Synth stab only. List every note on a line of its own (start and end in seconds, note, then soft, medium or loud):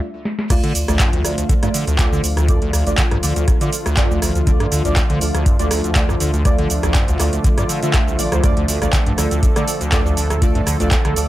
0.50 0.85 A3 medium
0.50 0.85 F4 medium
0.50 0.85 D5 loud
0.88 1.02 A3 medium
0.88 1.02 F4 medium
0.88 1.02 D5 loud
1.25 1.60 A3 medium
1.25 1.60 F4 medium
1.25 1.60 D5 medium
1.63 1.76 A3 medium
1.63 1.76 F4 medium
1.63 1.76 D5 loud
1.99 2.22 A3 loud
1.99 2.22 F4 medium
1.99 2.22 D5 loud
2.49 2.84 A3 loud
2.49 2.84 F4 medium
2.49 2.84 D5 loud
2.87 3.00 A3 medium
2.87 3.00 F4 medium
2.87 3.00 D5 loud
3.23 3.58 A3 medium
3.23 3.58 F4 medium
3.23 3.58 D5 medium
3.61 3.74 A3 medium
3.61 3.74 F4 medium
3.61 3.74 D5 loud
3.97 4.20 A3 loud
3.97 4.20 F4 medium
3.97 4.20 D5 loud
4.47 4.82 A3 medium
4.47 4.82 F4 medium
4.47 4.82 D5 loud
4.85 4.98 A3 medium
4.85 4.98 F4 medium
4.85 4.98 D5 loud
5.21 5.56 A3 medium
5.21 5.56 F4 medium
5.21 5.56 D5 medium
5.59 5.73 A3 medium
5.59 5.73 F4 medium
5.59 5.73 D5 loud
5.96 6.19 A3 loud
5.96 6.19 F4 medium
5.96 6.19 D5 loud
6.45 6.80 A3 loud
6.45 6.80 F4 medium
6.45 6.80 D5 loud
6.83 6.97 A3 medium
6.83 6.97 F4 medium
6.83 6.97 D5 loud
7.20 7.55 A3 medium
7.20 7.55 F4 medium
7.20 7.55 D5 medium
7.58 7.71 A3 medium
7.58 7.71 F4 medium
7.58 7.71 D5 loud
7.83 8.16 A3 medium
7.83 8.16 F4 medium
7.83 8.16 E5 medium
8.19 8.30 A3 medium
8.19 8.30 F4 medium
8.19 8.30 D5 loud
8.32 8.42 A3 medium
8.32 8.42 F4 medium
8.32 8.42 C5 medium
8.44 8.79 A3 loud
8.44 8.79 F4 medium
8.44 8.79 D5 loud
8.82 8.95 A3 medium
8.82 8.95 F4 medium
8.82 8.95 D5 loud
9.18 9.53 A3 medium
9.18 9.53 F4 medium
9.18 9.53 D5 medium
9.56 9.69 A3 medium
9.56 9.69 F4 medium
9.56 9.69 D5 medium
9.92 10.15 A3 loud
9.92 10.15 F4 medium
9.92 10.15 D5 loud
10.42 10.77 A3 loud
10.42 10.77 F4 medium
10.42 10.77 D5 loud
10.80 10.93 A3 medium
10.80 10.93 F4 medium
10.80 10.93 D5 loud
11.16 11.28 A3 medium
11.16 11.28 F4 medium
11.16 11.28 D5 medium